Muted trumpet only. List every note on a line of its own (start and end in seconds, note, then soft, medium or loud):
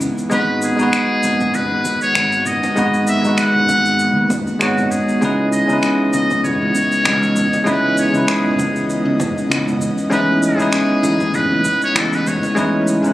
0.33 0.61 B4 loud
0.64 1.56 G#4 loud
1.55 2.02 B4 loud
2.02 2.48 C#5 loud
2.46 3.08 D#5 loud
3.08 3.37 E5 loud
3.39 4.31 F#5 loud
4.61 4.92 F#4 medium
4.91 5.51 G#4 medium
5.52 6.09 D#5 loud
6.14 6.42 D#5 loud
6.44 7.63 C#5 loud
7.63 7.70 C#5 medium
7.69 7.99 B4 loud
7.99 8.31 C#5 medium
8.29 8.90 G#4 medium
10.12 10.40 B4 loud
10.44 11.37 G#4 loud
11.35 11.82 B4 loud
11.84 12.00 C#5 loud
11.98 12.16 A4 loud
12.15 12.30 B4 loud
12.28 12.88 C#5 loud